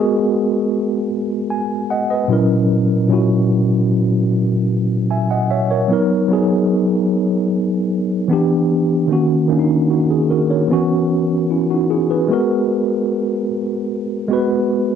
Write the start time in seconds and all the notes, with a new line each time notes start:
Already playing: G#3 B3 F#4 G#4 A#4
1.50 G#5
1.90 D#5 F#5
2.10 B4 D#5
2.28 A#2 F#3 C#4 E4
2.33 A#4
3.08 A#2 F#3 C#4 E4
3.13 F#4
5.10 E5 G#5
5.30 D#5 F#5
5.50 C#5 E5
5.70 A#4 C#5
5.88 F#3 B3 D#4
5.93 A#4
6.28 F#3 B3 D#4
6.33 G#4
8.28 E3 B3 D4
8.33 G4
9.08 D#3 A#3 C#4
9.13 F#4
9.48 D#3 A#3 C#4
9.53 D4
9.59 D#4
9.91 D#4 F#4
10.11 G#4
10.30 F#4 A#4
10.50 A#4 C#5
10.68 E3 B3 C#4
10.73 F#4
11.50 C#4 E4
11.70 D#4 F#4
11.90 E4 G#4
12.10 G#4 B4
12.28 G#3 B3 F#4
12.33 A#4
14.28 G#3 B3 F#4
14.33 B4